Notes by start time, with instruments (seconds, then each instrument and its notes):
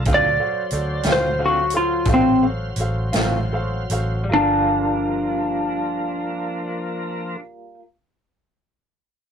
0.05 fingered electric bass D2, clean electric guitar D3 F#3, tonewheel organ F#3 C5 F5, upright piano F#4 A4 C5 F5, kick, closed hi-hat
0.09 clean electric guitar C4 F4
0.14 electric slide guitar D5
0.40 upright piano F#4 A4 C5 F5
0.70 fingered electric bass D2, upright piano F#4 A4 C5 D5, closed hi-hat
1.03 fingered electric bass D2, clean electric guitar F4, upright piano F#4 A4 C5 F5, snare, closed hi-hat
1.08 clean electric guitar F#3 C4, electric slide guitar C5
1.38 clean electric guitar D3 F#3 C4 F4, upright piano F#4 A4 C5 F5
1.46 electric slide guitar F#4
1.70 upright piano A4, closed hi-hat
1.74 electric slide guitar F4, upright piano F#4 C5 F5
2.05 fingered electric bass A1, clean electric guitar D3 F#3 C4 F4, upright piano F#4 A4 C5 F5, kick, snare, closed hi-hat
2.14 electric slide guitar C4
2.42 upright piano F#4 A4 C5 F5
2.76 fingered electric bass A1, upright piano F#4, closed hi-hat
2.80 upright piano A4 C5 F5
3.13 fingered electric bass A1, clean electric guitar F#3 C4 F4, upright piano F#4 A4 C5 F5, snare, closed hi-hat
3.53 upright piano F#4 A4 C5 F5
3.90 fingered electric bass A1, upright piano F#4 A4 C5 F5, closed hi-hat
4.24 clean electric guitar G3
4.29 fingered electric bass G1, tonewheel organ F3 A#3, clean electric guitar A#3 F4, upright piano F4 A4
4.33 electric slide guitar D4, upright piano A#4 D5